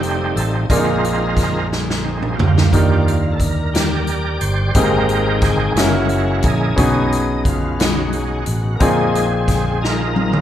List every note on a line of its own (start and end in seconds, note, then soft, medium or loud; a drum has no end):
0.00 0.32 F1 medium
0.00 0.66 G3 medium
0.00 0.66 A3 medium
0.00 0.65 C4 medium
0.00 0.66 C4 medium
0.00 0.65 D#4 medium
0.00 0.66 D#4 medium
0.00 0.66 F4 medium
0.00 0.38 G4 medium
0.00 0.69 A4 medium
0.00 0.67 C5 medium
0.00 closed hi-hat soft
0.36 0.67 A1 medium
0.36 0.51 A4 medium
0.36 closed hi-hat medium
0.70 2.35 A#1 medium
0.70 1.68 A#2 medium
0.70 1.67 G#3 medium
0.70 2.69 A#3 medium
0.70 1.68 C4 medium
0.70 0.77 D4 soft
0.70 1.68 D#4 medium
0.70 1.68 F4 medium
0.70 2.69 F4 medium
0.70 2.70 G#4 medium
0.70 1.67 A#4 medium
0.70 2.70 A#4 medium
0.70 kick medium
0.70 closed hi-hat medium
0.77 2.72 D#4 medium
1.04 closed hi-hat medium
1.37 kick medium
1.37 snare soft
1.37 closed hi-hat medium
1.72 snare medium
1.90 snare medium
2.04 2.35 G#3 soft
2.04 2.35 C4 soft
2.04 2.35 D#4 medium
2.22 mid tom medium
2.36 2.70 D2 medium
2.36 3.35 A#3 medium
2.36 3.35 F4 medium
2.36 3.01 G4 medium
2.36 floor tom loud
2.58 snare medium
2.71 4.38 D#2 loud
2.71 3.71 D#3 medium
2.71 3.17 F3 medium
2.71 3.17 G3 soft
2.71 4.71 A#3 medium
2.71 4.72 D4 medium
2.71 4.72 D#4 medium
2.71 4.72 G4 soft
2.71 3.18 D5 medium
2.71 kick medium
2.71 closed hi-hat medium
2.75 4.73 A#4 medium
3.08 closed hi-hat soft
3.32 3.40 A4 medium
3.40 3.74 A#4 medium
3.40 kick medium
3.40 closed hi-hat medium
3.73 4.71 G4 medium
3.73 4.38 A#4 loud
3.73 4.72 D5 medium
3.73 snare medium
3.73 closed hi-hat medium
4.07 closed hi-hat soft
4.41 4.73 G1 medium
4.41 4.76 C5 medium
4.41 closed hi-hat medium
4.74 5.73 G#1 medium
4.74 5.73 G#2 medium
4.74 5.72 G#3 medium
4.74 5.75 A#3 medium
4.74 5.73 A#3 medium
4.74 5.77 C4 medium
4.74 5.73 C4 medium
4.74 5.77 D#4 medium
4.74 5.74 D#4 medium
4.74 5.77 G4 medium
4.74 5.76 G#4 medium
4.74 5.39 A#4 loud
4.74 5.73 G5 medium
4.74 kick loud
4.74 closed hi-hat medium
5.09 closed hi-hat soft
5.42 5.79 G#4 medium
5.42 kick medium
5.42 snare soft
5.42 closed hi-hat medium
5.76 6.40 F#1 medium
5.76 6.74 G#3 medium
5.76 6.78 A#3 medium
5.76 6.75 A#3 medium
5.76 6.75 C#4 medium
5.76 6.45 C#4 medium
5.76 6.79 E4 medium
5.76 6.75 E4 medium
5.76 6.77 F#4 medium
5.76 6.47 F#4 medium
5.76 5.84 G#4 medium
5.76 snare loud
5.76 closed hi-hat medium
5.83 6.82 A#4 medium
6.09 closed hi-hat soft
6.42 6.75 A#1 medium
6.42 6.76 C#4 medium
6.42 7.08 G#4 medium
6.42 7.43 D#5 soft
6.42 kick loud
6.42 closed hi-hat medium
6.76 8.43 B1 medium
6.76 7.76 B2 medium
6.76 7.23 G#3 medium
6.76 8.76 B3 medium
6.76 8.77 C#4 medium
6.76 7.23 C#4 medium
6.76 7.23 D#4 medium
6.76 8.77 D#4 medium
6.76 8.77 F#4 medium
6.76 8.78 G#4 medium
6.76 kick loud
6.76 closed hi-hat medium
7.12 closed hi-hat medium
7.45 7.81 F4 medium
7.45 kick medium
7.45 closed hi-hat medium
7.79 8.13 C#4 medium
7.79 8.14 D#4 medium
7.79 8.77 F#4 medium
7.79 snare loud
7.79 closed hi-hat medium
8.13 8.44 G#3 soft
8.13 8.44 C#4 soft
8.13 8.45 D#4 medium
8.13 closed hi-hat soft
8.46 8.79 A1 medium
8.46 closed hi-hat medium
8.75 10.41 A#3 medium
8.75 8.82 A#4 medium
8.80 10.41 A#1 medium
8.80 9.79 A#2 medium
8.80 9.26 G#3 medium
8.80 10.41 C4 medium
8.80 9.80 C4 medium
8.80 10.41 D#4 medium
8.80 9.27 D#4 medium
8.80 10.41 F4 medium
8.80 10.41 G#4 medium
8.80 9.87 G#4 medium
8.80 kick medium
8.80 closed hi-hat medium
9.15 closed hi-hat medium
9.48 kick medium
9.48 snare soft
9.48 closed hi-hat medium
9.81 10.41 D#4 medium
9.81 10.41 F4 medium
9.81 10.41 A#4 loud
9.81 snare medium
10.16 high tom medium
10.33 mid tom medium